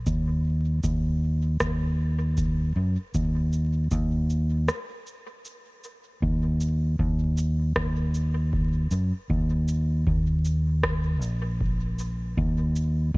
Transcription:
0.07 0.81 D#2 medium
0.07 kick medium
0.07 cabasa soft
0.83 1.57 D#2 medium
0.83 kick loud
0.83 cabasa soft
1.60 2.73 D#2 medium
1.60 kick medium
1.60 cross-stick medium
1.60 cabasa soft
2.37 kick medium
2.37 cabasa soft
2.76 2.96 F#2 medium
3.14 3.88 D#2 loud
3.14 kick medium
3.14 cabasa soft
3.53 cabasa soft
3.91 4.68 D#2 loud
3.91 kick loud
3.91 cabasa medium
4.30 cabasa soft
4.68 cross-stick medium
4.68 cabasa medium
5.07 cabasa soft
5.45 cabasa medium
5.84 cabasa soft
6.22 6.96 D#2 loud
6.22 kick loud
6.61 cabasa medium
6.99 7.73 D#2 loud
6.99 kick loud
7.38 cabasa medium
7.76 8.88 D#2 loud
7.76 kick loud
7.76 cross-stick medium
8.14 cabasa medium
8.53 kick loud
8.91 9.11 F#2 medium
8.91 cabasa medium
9.30 10.04 D#2 loud
9.30 kick loud
9.68 cabasa medium
10.07 11.22 D#2 loud
10.07 kick loud
10.45 cabasa medium
10.83 kick loud
10.83 cross-stick loud
11.22 12.34 A#1 medium
11.22 cabasa medium
11.61 kick loud
11.99 cabasa medium
12.37 13.11 D#2 loud
12.37 kick loud
12.76 cabasa medium
13.14 13.18 D#2 loud
13.14 kick loud

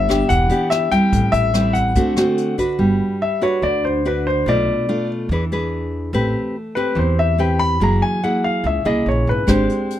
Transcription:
0.00 0.26 G1 medium
0.00 0.28 G3 medium
0.00 0.30 E5 medium
0.09 0.47 B3 medium
0.09 0.47 D4 medium
0.09 0.48 G4 medium
0.09 kick soft
0.09 cross-stick medium
0.09 closed hi-hat soft
0.29 0.49 E1 medium
0.29 0.91 E3 medium
0.29 0.68 F#5 medium
0.29 kick medium
0.29 closed hi-hat medium
0.50 0.88 B3 medium
0.50 0.89 D4 medium
0.50 0.89 G4 medium
0.50 closed hi-hat soft
0.70 0.92 E5 medium
0.70 cross-stick medium
0.70 closed hi-hat soft
0.92 1.51 G3 medium
0.92 1.51 C4 medium
0.92 1.51 E4 medium
0.92 1.35 G5 medium
0.92 kick soft
0.92 closed hi-hat soft
1.12 1.32 A1 medium
1.12 1.94 A2 medium
1.12 kick medium
1.12 closed hi-hat medium
1.32 1.92 A1 medium
1.32 1.76 E5 medium
1.32 closed hi-hat soft
1.54 1.94 G3 soft
1.54 1.95 C4 medium
1.54 1.95 E4 medium
1.54 cross-stick medium
1.54 closed hi-hat soft
1.73 2.54 F#5 medium
1.73 kick soft
1.73 closed hi-hat soft
1.95 2.15 D2 medium
1.95 2.78 D3 medium
1.95 2.14 A3 medium
1.95 2.14 C4 soft
1.95 2.14 F#4 medium
1.95 kick medium
1.95 closed hi-hat medium
2.16 2.56 A3 medium
2.16 2.56 C4 medium
2.16 2.56 F#4 medium
2.16 cross-stick medium
2.16 closed hi-hat soft
2.38 closed hi-hat soft
2.58 3.19 D4 medium
2.58 3.20 F#4 medium
2.58 3.20 B4 medium
2.58 kick soft
2.58 closed hi-hat soft
2.79 2.99 G1 medium
2.79 3.61 G3 medium
3.22 3.42 E5 medium
3.41 4.01 D4 medium
3.41 4.02 F#4 medium
3.41 4.02 B4 medium
3.41 3.63 C#5 medium
3.62 4.42 D2 medium
3.62 4.44 D3 medium
3.62 3.84 D5 medium
3.85 4.05 C5 medium
4.05 4.45 D4 medium
4.05 4.45 F#4 soft
4.05 4.46 B4 medium
4.05 4.26 B4 medium
4.27 4.47 C5 medium
4.46 4.66 B1 medium
4.46 5.29 B2 medium
4.46 4.86 A3 soft
4.46 4.86 D4 medium
4.46 4.86 F4 medium
4.46 5.06 D5 medium
4.89 5.29 A3 medium
4.89 5.29 D4 soft
4.89 5.29 F4 medium
5.29 6.09 E2 medium
5.29 6.12 E3 medium
5.29 5.43 D4 soft
5.29 5.43 G#4 medium
5.29 5.44 B4 medium
5.52 6.11 D4 medium
5.52 6.11 G#4 medium
5.52 6.11 B4 medium
6.13 6.33 A1 medium
6.13 6.95 A3 medium
6.13 6.55 C4 soft
6.13 6.55 G4 medium
6.13 6.55 B4 medium
6.75 7.36 C4 medium
6.75 7.36 G4 soft
6.75 6.96 B4 medium
6.75 7.36 B4 medium
6.95 7.76 E2 medium
6.95 7.78 E3 soft
6.95 7.18 C5 medium
7.19 7.39 E5 medium
7.38 7.79 C4 medium
7.38 7.79 G4 soft
7.38 7.79 B4 medium
7.38 7.60 G5 medium
7.59 7.80 B5 medium
7.80 8.00 F#1 medium
7.80 8.62 F#3 medium
7.80 8.19 A#3 medium
7.80 8.20 E4 medium
7.80 8.20 G#4 medium
7.80 8.02 A#5 medium
8.02 8.22 G#5 medium
8.23 8.82 A#3 soft
8.23 8.83 E4 medium
8.23 8.83 G#4 medium
8.23 8.43 F#5 medium
8.44 8.64 F5 medium
8.64 8.83 C#2 medium
8.64 9.46 C#3 medium
8.64 8.86 E5 medium
8.85 9.04 C2 medium
8.85 9.45 A#3 medium
8.85 9.45 E4 medium
8.85 9.45 G#4 medium
8.85 9.06 D#5 medium
9.06 9.25 A#1 medium
9.06 9.28 C#5 medium
9.27 9.46 G#1 medium
9.27 9.48 B4 medium
9.47 9.67 G#1 medium
9.47 10.00 G#3 medium
9.47 10.00 C4 medium
9.47 10.00 D4 medium
9.47 10.00 G4 medium
9.47 10.00 C5 medium
9.47 kick medium
9.47 cross-stick medium
9.47 closed hi-hat soft
9.69 closed hi-hat soft
9.90 closed hi-hat soft

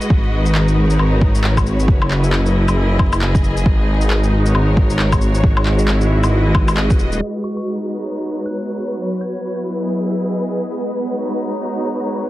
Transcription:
0.00 1.88 G#3 medium
0.00 0.11 E4 medium
0.00 2.60 F#4 medium
0.00 5.44 B4 medium
0.00 0.83 D#5 medium
0.00 shaker soft
0.10 0.98 G#1 loud
0.10 kick loud
0.28 1.88 D#4 medium
0.46 1.89 A#4 medium
0.46 shaker medium
0.55 clap medium
0.68 shaker soft
0.83 2.61 C#5 medium
0.90 shaker medium
0.99 1.33 G#1 medium
0.99 low woodblock soft
1.21 kick medium
1.35 1.90 G#1 loud
1.35 shaker medium
1.44 clap loud
1.57 kick medium
1.57 low woodblock soft
1.57 shaker soft
1.66 shaker soft
1.80 shaker soft
1.88 2.66 F#1 medium
1.88 3.66 F#3 medium
1.88 kick loud
2.00 3.66 E4 medium
2.00 low woodblock soft
2.10 4.38 D#5 medium
2.10 clap medium
2.24 shaker medium
2.33 clap medium
2.46 shaker soft
2.68 3.65 F#1 medium
2.68 4.38 G#4 medium
2.68 low woodblock soft
2.68 shaker medium
2.99 kick loud
2.99 low woodblock medium
3.13 low woodblock medium
3.13 shaker medium
3.21 clap loud
3.35 kick medium
3.35 shaker soft
3.44 shaker soft
3.57 shaker medium
3.66 4.54 G#1 loud
3.66 8.99 G#3 medium
3.66 kick loud
3.77 5.44 D#4 medium
4.01 shaker soft
4.10 clap loud
4.24 shaker soft
4.29 9.71 F#4 medium
4.46 5.44 A#4 medium
4.46 6.16 C#5 medium
4.46 shaker medium
4.54 4.88 G#1 medium
4.54 low woodblock soft
4.77 kick loud
4.90 5.42 G#1 loud
4.90 shaker medium
4.99 clap medium
5.12 kick medium
5.12 low woodblock medium
5.12 shaker soft
5.21 shaker soft
5.35 shaker medium
5.44 6.22 G#1 medium
5.44 kick loud
5.57 low woodblock medium
5.66 clap medium
5.79 shaker medium
5.88 7.21 E4 medium
5.88 clap loud
6.01 shaker soft
6.23 6.54 G#1 medium
6.23 12.30 B4 medium
6.23 7.93 D#5 medium
6.23 low woodblock soft
6.23 shaker medium
6.55 7.00 G#1 medium
6.55 kick loud
6.55 low woodblock medium
6.68 low woodblock medium
6.68 shaker medium
6.77 clap loud
6.90 kick loud
6.90 shaker soft
6.99 7.20 D#1 medium
6.99 shaker soft
7.12 shaker medium
7.21 12.30 B3 medium
7.21 12.30 B4 medium
7.44 7.52 C#6 medium
7.57 7.63 C#6 medium
7.61 8.99 D#4 medium
7.71 8.99 A#5 medium
7.88 cabasa medium
8.03 9.71 C#5 medium
8.33 cabasa medium
8.46 8.69 F#6 medium
8.77 cabasa medium
8.99 10.77 F#3 medium
9.21 9.57 G#6 medium
9.21 cabasa medium
9.44 10.77 E4 medium
9.66 cabasa medium
9.81 11.49 G#4 medium
9.81 11.49 D#5 medium
10.10 cabasa medium
10.55 cabasa medium
10.77 12.30 G#3 medium
11.00 cabasa medium
11.07 12.30 F#4 medium
11.07 12.30 C#5 medium
11.13 12.30 D#4 medium
11.26 12.30 A#5 medium
11.44 cabasa medium
11.88 cabasa medium

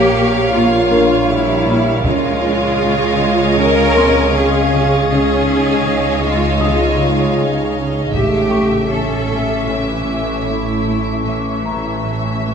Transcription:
0.00 2.01 A#1 medium
0.00 2.02 A#1 medium
0.00 0.51 A#3 medium
0.00 0.51 G4 medium
0.00 2.01 A#4 soft
0.00 2.01 C#5 medium
0.00 2.01 C#5 soft
0.00 2.01 F5 medium
0.16 0.39 A#2 soft
0.54 0.77 A#2 medium
0.54 1.29 A#3 medium
0.54 1.30 F4 medium
0.91 1.15 A#2 soft
0.91 3.15 D4 soft
0.91 3.16 A#4 soft
1.30 1.53 A#2 soft
1.30 2.05 G3 medium
1.30 2.05 E4 medium
1.68 1.90 A#2 soft
2.03 5.08 C#2 medium
2.03 5.10 C#2 medium
2.03 2.27 C#3 medium
2.03 3.59 G#3 medium
2.03 3.59 F4 medium
2.03 5.10 F4 soft
2.03 5.09 G#4 soft
2.03 5.06 C#5 medium
2.03 5.06 D#5 medium
2.03 5.06 F5 medium
2.03 5.06 F5 soft
2.03 7.71 C#6 soft
2.03 5.72 D#6 soft
2.03 5.16 G#6 soft
2.03 taiko soft
2.43 2.66 C#4 soft
2.81 3.04 C#3 soft
3.19 3.43 C#3 soft
3.58 3.81 C#3 medium
3.58 4.33 C#4 medium
3.58 4.33 A#4 medium
3.96 4.19 C#3 soft
3.96 6.20 C4 soft
3.96 6.20 C6 soft
4.35 4.57 C#3 soft
4.35 5.09 C#4 medium
4.35 5.09 G#4 medium
4.72 4.94 C#3 soft
5.09 8.10 C#2 medium
5.09 8.11 C#2 medium
5.09 5.32 C#3 medium
5.09 6.22 C#4 medium
5.09 8.11 D#4 soft
5.09 6.22 G#4 medium
5.09 8.10 G#4 soft
5.09 8.10 C#5 medium
5.09 8.10 D#5 medium
5.09 8.10 D#5 soft
5.09 8.10 F5 medium
5.16 6.19 A6 soft
5.48 5.71 C#4 soft
5.72 6.95 E6 soft
5.86 6.09 C#3 soft
6.24 6.47 C#3 soft
6.24 6.62 G#3 medium
6.24 6.61 F4 medium
6.61 6.85 C#3 medium
6.61 7.37 G#3 soft
6.61 8.86 D#4 soft
6.61 7.36 F4 medium
6.61 8.86 D#6 soft
7.00 7.23 C#3 soft
7.39 7.61 C#3 soft
7.76 7.99 C#3 soft
8.12 11.21 A1 soft
8.12 11.25 A1 medium
8.12 8.37 A2 medium
8.12 8.87 A3 medium
8.12 11.25 C#4 soft
8.12 8.87 G4 medium
8.12 11.25 A4 soft
8.12 11.21 E5 soft
8.12 11.22 E5 soft
8.12 11.93 C#6 soft
8.12 11.93 D6 soft
8.12 taiko soft
8.51 8.75 A3 soft
8.51 10.80 C#6 soft
8.90 9.13 A2 soft
8.90 9.66 C#4 soft
8.90 9.67 A4 soft
9.28 9.51 A2 soft
9.28 11.61 E5 soft
9.66 9.90 A2 soft
9.66 10.46 E3 soft
9.66 10.46 C#4 soft
10.05 10.29 A2 soft
10.45 10.69 A2 soft
10.45 11.25 A3 soft
10.45 11.26 E4 soft
10.85 11.09 A2 soft
11.24 12.54 A1 soft
11.24 12.54 A1 medium
11.24 11.48 A2 soft
11.24 12.54 E3 soft
11.24 12.54 C#4 soft
11.24 12.54 E4 soft
11.24 12.54 E5 soft
11.65 11.89 A3 soft
11.65 12.54 A#5 soft
11.93 12.54 C#6 soft
12.05 12.29 A2 soft
12.46 12.54 A2 soft

